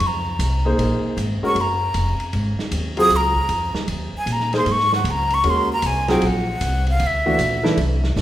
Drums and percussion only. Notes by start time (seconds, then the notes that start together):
0.00 ride
0.39 hi-hat pedal, ride
0.79 ride
1.18 hi-hat pedal, ride
1.56 ride
1.94 hi-hat pedal, ride
2.20 ride
2.33 ride
2.59 snare
2.71 hi-hat pedal, ride
2.97 ride
3.10 ride
3.36 kick
3.49 hi-hat pedal, ride
3.75 snare
3.88 ride
4.27 hi-hat pedal, ride
4.40 snare
4.53 snare, ride
4.66 ride
4.80 snare
4.93 snare
5.05 hi-hat pedal, ride
5.30 ride
5.44 ride
5.82 hi-hat pedal, ride
6.08 snare, ride
6.22 ride
6.61 hi-hat pedal, ride
6.87 ride
7.00 ride
7.39 hi-hat pedal, ride
7.65 snare
7.77 ride
8.04 snare
8.17 snare, hi-hat pedal